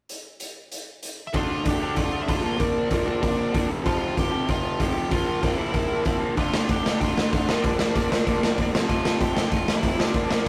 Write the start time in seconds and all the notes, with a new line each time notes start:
0.09 closed hi-hat
0.40 closed hi-hat
0.72 closed hi-hat
1.03 closed hi-hat
1.27 E5
1.33 D3 A3 D4 F4, kick, open hi-hat
1.38 F5
1.64 D3 A3 D4, kick, open hi-hat
1.68 G4 G5
1.80 D3 A3 D4
1.96 D3 A3 D4 F4, kick, open hi-hat
2.00 F5
2.22 E5
2.27 D3 A3 D4 F4 F5, kick, open hi-hat
2.42 A#2 F3 A#3
2.57 A#2 F3 A#3 D4, kick, open hi-hat
2.63 D5
2.90 A#2 F3 A#3 D4 D5, kick, open hi-hat
3.06 A#2 F3 A#3
3.22 A#2 F3 A#3, kick, open hi-hat
3.53 A#2 F3 A#3, kick, open hi-hat
3.69 F2 C3 F3
3.83 F2 C3 F3 F4 F5, kick, open hi-hat
4.15 F2 C3 F3, kick, open hi-hat
4.19 G4 G5
4.31 F2 C3 F3
4.46 F2 C3 F3, kick, open hi-hat
4.50 F4 F5
4.79 F2 C3 F3 G4, kick, open hi-hat
4.84 G5
4.94 F2 C3 F3
5.10 A#2 F3 A#3 F4 F5, kick, open hi-hat
5.40 A#2 F3 A#3, kick, open hi-hat
5.45 E4 E5
5.56 A#2 F3 A#3
5.72 A#2 F3 A#3, kick, open hi-hat
6.05 A#2 F3 A#3, kick, open hi-hat
6.20 A#2 F3 A#3
6.36 D3 A3 D4 F4 F5, kick, open hi-hat
6.54 snare
6.69 D3 A3 D4 G4 G5, kick, open hi-hat
6.83 D3 A3 D4, snare
7.01 D3 A3 D4 F4 F5, kick, open hi-hat
7.18 snare
7.32 D3 A3 D4 F4 F5, kick, open hi-hat
7.48 A#2 F3 A#3, snare
7.63 A#2 F3 A#3 D4 D5, kick, open hi-hat
7.79 snare
7.95 A#2 F3 A#3 D4 D5, kick, open hi-hat
8.10 A#2 F3 A#3, snare
8.25 A#2 F3 A#3, kick, open hi-hat
8.43 snare
8.58 A#2 F3 A#3, kick, open hi-hat
8.72 F2 C3 F3, snare
8.87 F2 C3 F3 F4 F5, kick, open hi-hat
9.05 snare
9.19 F2 C3 F3 G4 G5, kick, open hi-hat
9.34 F2 C3 F3, snare
9.49 F2 C3 F3 F4 F5, kick, open hi-hat
9.68 snare
9.76 E4 E5
9.82 F2 C3 F3, kick, open hi-hat
9.96 F2 C3 F3 D4 D5, snare
10.13 A#2 F3 A#3, kick, open hi-hat
10.31 snare
10.44 A#2 F3 A#3